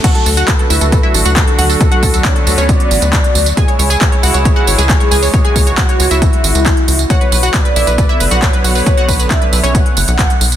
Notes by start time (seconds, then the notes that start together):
Already playing: A3
0.04 D3 F#3 F#4 A4 F#5, kick, closed hi-hat, tambourine, crash
0.15 A4, closed hi-hat
0.26 D2 A4, open hi-hat, tambourine
0.37 F#4 F#5, closed hi-hat, tambourine
0.48 B4, kick, clap, closed hi-hat, tambourine
0.59 A4, closed hi-hat
0.70 D2 E4 E5, open hi-hat, tambourine
0.81 D2 A4, closed hi-hat, tambourine
0.92 A4, kick, closed hi-hat, tambourine
1.03 E4 E5
1.14 A1 A4, open hi-hat, tambourine
1.25 D2 F#4 F#5, closed hi-hat, tambourine
1.36 A4, kick, clap, closed hi-hat, tambourine
1.47 A4, closed hi-hat
1.58 D2 F#4 F#5, open hi-hat, tambourine
1.69 A4, open hi-hat, tambourine
1.80 B3 A4, kick, closed hi-hat, tambourine
1.92 F#4 F#5, closed hi-hat
2.03 D2 A4, kick, open hi-hat, tambourine
2.14 A4, closed hi-hat, tambourine
2.25 D4 C#5 D5, kick, clap, closed hi-hat, tambourine
2.36 A4, closed hi-hat
2.47 D2 A4, open hi-hat, tambourine
2.58 D2 C#4 C#5, closed hi-hat, tambourine
2.69 D5, kick, closed hi-hat, tambourine
2.80 closed hi-hat
2.91 A1, open hi-hat, tambourine
3.02 D2, closed hi-hat, tambourine
3.13 kick, clap, closed hi-hat, tambourine
3.24 closed hi-hat
3.35 D2, open hi-hat, tambourine
3.46 closed hi-hat, tambourine
3.57 E3 G#3 E4 G#4 G#5, kick, closed hi-hat, tambourine
3.68 C#5, closed hi-hat
3.79 C#2 C#5, open hi-hat, tambourine
3.90 G#4 G#5, closed hi-hat, tambourine
4.01 G#4 C#5, kick, clap, closed hi-hat
4.12 C#5, closed hi-hat
4.23 C#2 F#4 F#5, open hi-hat, tambourine
4.34 C#2 C#5, closed hi-hat, tambourine
4.45 C#5, kick, closed hi-hat, tambourine
4.56 F#4 F#5
4.67 G#1 C#5, open hi-hat, tambourine
4.78 C#2 G#4 G#5, closed hi-hat, tambourine
4.89 G#4 C#5, kick, clap, closed hi-hat, tambourine
5.00 C#5, closed hi-hat
5.11 C#2 G#4 G#5, open hi-hat, tambourine
5.23 C#5, open hi-hat, tambourine
5.33 F#4 C#5, kick, closed hi-hat, tambourine
5.45 G#4 G#5, closed hi-hat
5.56 C#2 C#5, kick, open hi-hat, tambourine
5.67 C#5, closed hi-hat, tambourine
5.78 F#4 F#5, kick, clap, closed hi-hat, tambourine
5.89 C#5, closed hi-hat
6.00 C#2 C#5, open hi-hat, tambourine
6.11 C#2 E4 E5, closed hi-hat, tambourine
6.22 E4, kick, closed hi-hat, tambourine
6.33 closed hi-hat
6.44 G#1, open hi-hat, tambourine
6.55 C#2, closed hi-hat, tambourine
6.66 kick, clap, closed hi-hat, tambourine
6.77 closed hi-hat
6.88 C#2, open hi-hat, tambourine
6.99 closed hi-hat, tambourine
7.10 D3 F#3 B3 F#4 C#5 F#5, kick, closed hi-hat, tambourine
7.21 B4, closed hi-hat
7.32 B1 B4, open hi-hat, tambourine
7.43 F#4 F#5, closed hi-hat, tambourine
7.54 B4, kick, clap, closed hi-hat, tambourine
7.65 B4, closed hi-hat
7.76 B1 E4 E5, open hi-hat, tambourine
7.87 B1 B4, closed hi-hat, tambourine
7.98 B4, kick, closed hi-hat, tambourine
8.09 E4 E5
8.20 F#1 B4, open hi-hat, tambourine
8.31 B1 F#4 F#5, closed hi-hat, tambourine
8.42 C#5, kick, clap, closed hi-hat, tambourine
8.53 B4, closed hi-hat
8.64 B1 F#4 F#5, open hi-hat, tambourine
8.75 B4, open hi-hat, tambourine
8.86 B4, kick, closed hi-hat, tambourine
8.97 F#4 F#5, closed hi-hat
9.09 B1 B4, kick, open hi-hat, tambourine
9.19 B4, closed hi-hat, tambourine
9.31 D4 D5 E5, kick, clap, closed hi-hat, tambourine
9.41 B4, closed hi-hat
9.52 B1 B4, open hi-hat, tambourine
9.63 B1 C#4 C#5, closed hi-hat, tambourine
9.75 F#5, kick, closed hi-hat, tambourine
9.86 closed hi-hat
9.97 F#1, open hi-hat, tambourine
10.08 B1, closed hi-hat, tambourine
10.19 kick, clap, closed hi-hat, tambourine
10.30 closed hi-hat
10.41 B1, open hi-hat, tambourine
10.52 closed hi-hat, tambourine